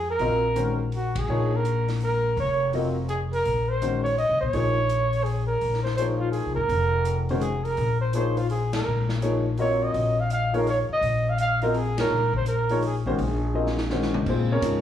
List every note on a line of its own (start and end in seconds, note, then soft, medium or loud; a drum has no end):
0.00 0.16 F2 medium
0.11 0.77 A#4 loud
0.19 1.24 A#1 medium
0.19 0.41 F#3 medium
0.19 0.41 C4 medium
0.19 0.41 F4 medium
0.19 0.42 A#4 medium
0.19 0.42 D#5 medium
0.19 open hi-hat soft
0.55 0.77 D#3 medium
0.55 0.77 G#3 soft
0.55 0.77 C#4 soft
0.55 0.78 F#4 soft
0.55 0.78 C5 medium
0.55 closed hi-hat medium
0.92 1.20 F#4 medium
0.92 open hi-hat soft
1.15 1.58 G#4 medium
1.15 kick medium
1.15 ride medium
1.28 2.32 A#1 medium
1.28 1.50 F3 medium
1.28 1.50 A#3 medium
1.28 1.50 D#4 medium
1.28 1.50 G#4 medium
1.28 1.50 C#5 medium
1.56 1.90 A#4 medium
1.65 closed hi-hat medium
1.88 snare soft
1.88 open hi-hat soft
2.00 2.36 A#4 medium
2.00 open hi-hat soft
2.37 3.41 F1 medium
2.37 2.72 C#5 medium
2.37 open hi-hat soft
2.73 2.94 F#3 medium
2.73 2.94 C4 soft
2.73 2.95 F4 soft
2.73 2.95 A#4 soft
2.73 2.95 D#5 medium
2.73 open hi-hat soft
3.09 3.20 G#4 medium
3.09 closed hi-hat soft
3.33 3.70 A#4 loud
3.33 open hi-hat soft
3.45 4.26 A#1 medium
3.45 open hi-hat soft
3.69 4.03 C5 loud
3.82 4.03 D#3 medium
3.82 4.03 G#3 soft
3.82 4.03 C#4 soft
3.82 4.03 F#4 soft
3.82 4.03 C5 medium
3.82 closed hi-hat medium
4.04 4.16 C#5 medium
4.04 open hi-hat soft
4.18 4.40 D#5 loud
4.18 open hi-hat soft
4.29 4.40 C2 medium
4.41 4.52 B1 medium
4.41 5.25 C#5 loud
4.53 5.58 A#1 medium
4.53 4.74 F3 medium
4.53 4.74 A#3 medium
4.53 4.75 D#4 medium
4.53 4.75 G#4 medium
4.53 4.75 C#5 medium
4.53 open hi-hat soft
4.89 closed hi-hat medium
5.13 open hi-hat soft
5.24 5.46 G#4 medium
5.24 open hi-hat soft
5.47 5.81 A#4 medium
5.61 6.42 A#1 medium
5.61 open hi-hat soft
5.74 snare soft
5.83 5.96 C5 medium
5.83 snare soft
5.97 6.52 F3 medium
5.97 6.53 A#3 soft
5.97 6.53 D#4 soft
5.97 6.53 G#4 soft
5.97 6.08 C5 medium
5.97 6.53 C#5 medium
5.97 closed hi-hat medium
6.20 6.31 F4 medium
6.32 6.55 G#4 medium
6.32 open hi-hat soft
6.45 6.57 C2 medium
6.55 6.68 G#1 medium
6.55 7.24 A#4 medium
6.69 7.74 F1 medium
6.69 open hi-hat soft
7.05 closed hi-hat medium
7.29 7.41 D#3 medium
7.29 7.41 G#3 medium
7.29 7.41 C#4 medium
7.29 7.41 F#4 medium
7.29 7.42 C5 medium
7.29 open hi-hat soft
7.41 7.66 G#4 medium
7.41 closed hi-hat soft
7.64 8.00 A#4 medium
7.64 open hi-hat soft
7.77 8.82 A#1 medium
7.77 open hi-hat soft
8.01 8.13 C5 medium
8.13 8.35 F3 medium
8.13 8.35 A#3 medium
8.13 8.36 D#4 soft
8.13 8.36 G#4 medium
8.13 8.39 C5 medium
8.13 8.36 C#5 medium
8.13 closed hi-hat soft
8.37 8.50 F4 medium
8.37 open hi-hat soft
8.50 8.72 G#4 medium
8.50 open hi-hat soft
8.73 9.13 A#4 medium
8.73 snare medium
8.73 ride medium
8.86 9.90 A#1 medium
9.09 snare medium
9.22 9.43 F3 medium
9.22 9.43 A#3 medium
9.22 9.43 D#4 medium
9.22 9.44 G#4 medium
9.22 9.44 C#5 medium
9.22 closed hi-hat soft
9.57 10.13 F#3 medium
9.57 10.14 C4 soft
9.57 10.14 F4 medium
9.57 10.14 A#4 soft
9.57 9.85 C#5 medium
9.57 10.14 D#5 medium
9.57 open hi-hat soft
9.83 10.22 D#5 loud
9.94 10.86 A#1 medium
9.94 open hi-hat soft
10.20 10.32 F5 medium
10.30 10.54 F5 medium
10.30 closed hi-hat medium
10.53 10.65 F3 medium
10.53 10.65 A#3 medium
10.53 10.65 D#4 medium
10.53 10.65 G#4 medium
10.53 10.67 A#4 medium
10.53 10.65 C#5 medium
10.53 open hi-hat soft
10.67 10.79 C#5 medium
10.67 open hi-hat soft
10.89 11.31 D#5 loud
10.89 muted upright bass stroke soft
11.01 12.06 A#1 medium
11.01 open hi-hat soft
11.29 11.40 F5 medium
11.38 11.62 F5 medium
11.38 closed hi-hat medium
11.62 11.74 F#3 medium
11.62 11.74 C4 medium
11.62 11.74 F4 medium
11.62 11.78 A#4 medium
11.62 11.74 A#4 medium
11.62 11.74 D#5 medium
11.62 open hi-hat soft
11.74 11.99 G#4 medium
11.74 open hi-hat soft
11.98 12.10 F3 medium
11.98 12.10 A#3 medium
11.98 12.10 D#4 medium
11.98 12.10 G#4 medium
11.98 12.32 A#4 medium
11.98 12.10 C#5 medium
11.98 snare medium
11.98 ride medium
12.10 13.14 A#1 medium
12.34 12.47 C5 medium
12.34 kick medium
12.46 12.81 A#4 medium
12.46 closed hi-hat medium
12.69 12.81 F3 medium
12.69 12.82 A#3 medium
12.69 12.82 D#4 medium
12.69 12.82 G#4 medium
12.69 12.82 C#5 medium
12.69 open hi-hat soft
12.82 12.96 G#4 medium
12.82 open hi-hat soft
13.06 13.17 D#3 medium
13.06 13.18 G#3 medium
13.06 13.18 C#4 medium
13.06 13.18 F#4 medium
13.06 13.88 G#4 medium
13.06 13.18 C5 medium
13.06 kick soft
13.18 14.22 A#1 medium
13.18 open hi-hat soft
13.54 13.75 F#3 medium
13.54 13.76 C4 soft
13.54 13.75 F4 soft
13.54 13.76 A#4 medium
13.54 13.76 D#5 medium
13.67 snare soft
13.78 snare medium
13.90 14.26 D#3 medium
13.90 14.27 G#3 medium
13.90 14.27 C#4 medium
13.90 14.27 F#4 medium
13.90 14.27 C5 medium
13.90 snare medium
14.02 snare medium
14.14 mid tom medium
14.26 14.61 A#2 medium
14.26 14.51 C4 medium
14.26 14.51 F4 medium
14.26 14.51 G#4 medium
14.26 14.51 C5 medium
14.26 kick medium
14.26 crash medium
14.52 14.81 C#4 medium
14.52 14.61 G#4 medium
14.52 14.81 A#4 medium
14.52 14.81 C#5 medium
14.61 14.81 G#2 medium
14.61 14.81 F3 medium
14.61 14.81 A#3 soft
14.61 14.81 D#4 soft
14.61 14.81 G#4 medium
14.61 hi-hat pedal medium
14.61 ride medium